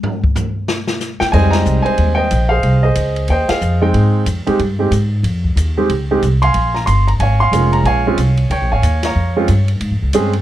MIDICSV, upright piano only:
0, 0, Header, 1, 2, 480
1, 0, Start_track
1, 0, Key_signature, -4, "minor"
1, 0, Tempo, 325556
1, 58, Time_signature, 4, 2, 24, 8
1, 15359, End_track
2, 0, Start_track
2, 0, Title_t, "Upright piano"
2, 0, Program_c, 0, 0
2, 1769, Note_on_c, 0, 79, 101
2, 1843, Note_off_c, 0, 79, 0
2, 1947, Note_on_c, 0, 80, 96
2, 1974, Note_on_c, 0, 72, 70
2, 1974, Note_on_c, 0, 75, 73
2, 1975, Note_on_c, 0, 63, 48
2, 1976, Note_on_c, 0, 55, 60
2, 1979, Note_on_c, 0, 56, 54
2, 1982, Note_on_c, 0, 60, 50
2, 2221, Note_on_c, 0, 82, 99
2, 2225, Note_off_c, 0, 75, 0
2, 2248, Note_on_c, 0, 75, 71
2, 2267, Note_off_c, 0, 80, 0
2, 2690, Note_on_c, 0, 80, 89
2, 2708, Note_off_c, 0, 72, 0
2, 2713, Note_off_c, 0, 75, 0
2, 2730, Note_on_c, 0, 72, 67
2, 2735, Note_on_c, 0, 75, 61
2, 2740, Note_off_c, 0, 82, 0
2, 3167, Note_on_c, 0, 79, 99
2, 3179, Note_off_c, 0, 75, 0
2, 3190, Note_off_c, 0, 72, 0
2, 3202, Note_on_c, 0, 75, 59
2, 3213, Note_on_c, 0, 72, 60
2, 3215, Note_off_c, 0, 80, 0
2, 3303, Note_off_c, 0, 55, 0
2, 3303, Note_off_c, 0, 63, 0
2, 3305, Note_off_c, 0, 56, 0
2, 3307, Note_off_c, 0, 60, 0
2, 3671, Note_off_c, 0, 72, 0
2, 3672, Note_on_c, 0, 77, 90
2, 3693, Note_off_c, 0, 79, 0
2, 3694, Note_on_c, 0, 72, 65
2, 3700, Note_on_c, 0, 68, 62
2, 4116, Note_off_c, 0, 75, 0
2, 4170, Note_off_c, 0, 68, 0
2, 4171, Note_off_c, 0, 72, 0
2, 4172, Note_on_c, 0, 75, 82
2, 4185, Note_off_c, 0, 77, 0
2, 4192, Note_on_c, 0, 68, 60
2, 4193, Note_on_c, 0, 72, 59
2, 4795, Note_off_c, 0, 75, 0
2, 4868, Note_off_c, 0, 72, 0
2, 4869, Note_on_c, 0, 79, 85
2, 4885, Note_on_c, 0, 75, 60
2, 4890, Note_on_c, 0, 72, 62
2, 5092, Note_off_c, 0, 68, 0
2, 5148, Note_on_c, 0, 77, 84
2, 5149, Note_off_c, 0, 72, 0
2, 5167, Note_off_c, 0, 79, 0
2, 5170, Note_on_c, 0, 68, 52
2, 5171, Note_on_c, 0, 72, 52
2, 5595, Note_off_c, 0, 77, 0
2, 5624, Note_on_c, 0, 63, 66
2, 5625, Note_on_c, 0, 60, 67
2, 5627, Note_on_c, 0, 56, 73
2, 5638, Note_on_c, 0, 79, 79
2, 5769, Note_off_c, 0, 75, 0
2, 6061, Note_off_c, 0, 68, 0
2, 6062, Note_off_c, 0, 72, 0
2, 6252, Note_off_c, 0, 63, 0
2, 6253, Note_off_c, 0, 60, 0
2, 6254, Note_off_c, 0, 56, 0
2, 6259, Note_off_c, 0, 79, 0
2, 6584, Note_on_c, 0, 60, 66
2, 6586, Note_on_c, 0, 63, 69
2, 6589, Note_on_c, 0, 56, 72
2, 6589, Note_on_c, 0, 67, 79
2, 6751, Note_off_c, 0, 60, 0
2, 6752, Note_off_c, 0, 63, 0
2, 6753, Note_off_c, 0, 56, 0
2, 6753, Note_off_c, 0, 67, 0
2, 7061, Note_on_c, 0, 56, 59
2, 7064, Note_on_c, 0, 63, 55
2, 7072, Note_on_c, 0, 60, 55
2, 7076, Note_on_c, 0, 67, 64
2, 7229, Note_off_c, 0, 56, 0
2, 7231, Note_off_c, 0, 63, 0
2, 7235, Note_off_c, 0, 60, 0
2, 7237, Note_off_c, 0, 67, 0
2, 8513, Note_on_c, 0, 63, 58
2, 8515, Note_on_c, 0, 60, 59
2, 8516, Note_on_c, 0, 56, 66
2, 8522, Note_on_c, 0, 67, 76
2, 8676, Note_off_c, 0, 63, 0
2, 8677, Note_off_c, 0, 56, 0
2, 8677, Note_off_c, 0, 60, 0
2, 8680, Note_off_c, 0, 67, 0
2, 9008, Note_on_c, 0, 63, 63
2, 9010, Note_on_c, 0, 56, 67
2, 9010, Note_on_c, 0, 60, 63
2, 9015, Note_on_c, 0, 67, 80
2, 9163, Note_off_c, 0, 63, 0
2, 9165, Note_off_c, 0, 56, 0
2, 9165, Note_off_c, 0, 60, 0
2, 9167, Note_off_c, 0, 67, 0
2, 9466, Note_on_c, 0, 84, 105
2, 9489, Note_on_c, 0, 80, 67
2, 9497, Note_on_c, 0, 77, 72
2, 9945, Note_on_c, 0, 82, 86
2, 9964, Note_off_c, 0, 84, 0
2, 10115, Note_on_c, 0, 84, 94
2, 10136, Note_off_c, 0, 82, 0
2, 10382, Note_off_c, 0, 80, 0
2, 10387, Note_off_c, 0, 77, 0
2, 10431, Note_on_c, 0, 82, 85
2, 10433, Note_off_c, 0, 84, 0
2, 10505, Note_off_c, 0, 82, 0
2, 10616, Note_on_c, 0, 80, 82
2, 10648, Note_on_c, 0, 77, 60
2, 10650, Note_on_c, 0, 73, 59
2, 10893, Note_off_c, 0, 80, 0
2, 10914, Note_on_c, 0, 84, 104
2, 10920, Note_off_c, 0, 77, 0
2, 10942, Note_on_c, 0, 77, 66
2, 10950, Note_on_c, 0, 80, 68
2, 11098, Note_on_c, 0, 56, 58
2, 11107, Note_on_c, 0, 61, 50
2, 11107, Note_on_c, 0, 65, 61
2, 11112, Note_on_c, 0, 58, 49
2, 11392, Note_on_c, 0, 82, 85
2, 11409, Note_off_c, 0, 84, 0
2, 11535, Note_off_c, 0, 73, 0
2, 11562, Note_off_c, 0, 82, 0
2, 11568, Note_off_c, 0, 80, 0
2, 11586, Note_off_c, 0, 77, 0
2, 11590, Note_on_c, 0, 80, 92
2, 11596, Note_on_c, 0, 73, 64
2, 11608, Note_on_c, 0, 77, 68
2, 11816, Note_off_c, 0, 56, 0
2, 11821, Note_off_c, 0, 61, 0
2, 11821, Note_off_c, 0, 65, 0
2, 11824, Note_off_c, 0, 58, 0
2, 11898, Note_on_c, 0, 56, 71
2, 11902, Note_on_c, 0, 60, 65
2, 11902, Note_on_c, 0, 61, 68
2, 11910, Note_on_c, 0, 65, 81
2, 12050, Note_off_c, 0, 56, 0
2, 12052, Note_off_c, 0, 60, 0
2, 12052, Note_off_c, 0, 61, 0
2, 12056, Note_off_c, 0, 65, 0
2, 12488, Note_off_c, 0, 73, 0
2, 12494, Note_off_c, 0, 77, 0
2, 12548, Note_on_c, 0, 79, 80
2, 12564, Note_on_c, 0, 73, 57
2, 12573, Note_off_c, 0, 80, 0
2, 12821, Note_off_c, 0, 79, 0
2, 12837, Note_off_c, 0, 73, 0
2, 12854, Note_on_c, 0, 80, 81
2, 12859, Note_on_c, 0, 73, 58
2, 12867, Note_on_c, 0, 77, 59
2, 13322, Note_off_c, 0, 77, 0
2, 13323, Note_off_c, 0, 73, 0
2, 13339, Note_off_c, 0, 80, 0
2, 13344, Note_on_c, 0, 77, 55
2, 13344, Note_on_c, 0, 82, 85
2, 13345, Note_on_c, 0, 73, 59
2, 13808, Note_on_c, 0, 56, 66
2, 13809, Note_on_c, 0, 61, 58
2, 13811, Note_on_c, 0, 60, 63
2, 13816, Note_on_c, 0, 65, 75
2, 13947, Note_off_c, 0, 82, 0
2, 13966, Note_off_c, 0, 56, 0
2, 13966, Note_off_c, 0, 61, 0
2, 13967, Note_off_c, 0, 60, 0
2, 13970, Note_off_c, 0, 65, 0
2, 14232, Note_off_c, 0, 73, 0
2, 14232, Note_off_c, 0, 77, 0
2, 14955, Note_on_c, 0, 56, 75
2, 14955, Note_on_c, 0, 61, 68
2, 14960, Note_on_c, 0, 60, 66
2, 14962, Note_on_c, 0, 68, 81
2, 15215, Note_off_c, 0, 56, 0
2, 15215, Note_off_c, 0, 61, 0
2, 15218, Note_off_c, 0, 60, 0
2, 15219, Note_off_c, 0, 68, 0
2, 15359, End_track
0, 0, End_of_file